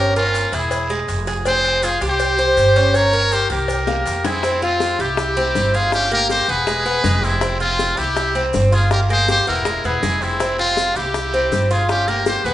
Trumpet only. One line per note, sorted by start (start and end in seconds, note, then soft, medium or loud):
0.00 0.13 G4 medium
0.15 0.55 C#4 medium
0.54 0.90 E4 medium
1.46 1.84 G#4 medium
1.83 2.02 F4 medium
2.09 2.98 G4 medium
2.96 3.35 A#4 medium
3.33 3.51 G4 medium
3.51 4.21 G4 medium
4.25 4.63 C4 medium
4.63 5.01 C4 medium
4.99 5.76 E4 medium
5.74 5.93 F4 medium
5.94 6.11 C#4 medium
6.11 6.29 G4 medium
6.30 6.51 G4 medium
6.49 7.25 G#4 loud
7.23 7.60 C4 medium
7.60 7.98 C4 medium
7.96 8.44 E4 loud
8.72 8.89 F4 medium
8.92 9.00 G4 medium
9.11 9.27 G#4 medium
9.28 9.46 G4 medium
9.48 9.84 E4 medium
9.84 10.23 E4 medium
10.21 10.58 C4 medium
10.58 10.96 C4 medium
10.95 11.70 E4 medium
11.70 11.88 F4 medium
11.89 12.09 C#4 medium
12.07 12.25 G4 medium
12.26 12.46 G4 medium
12.44 12.54 G#4 medium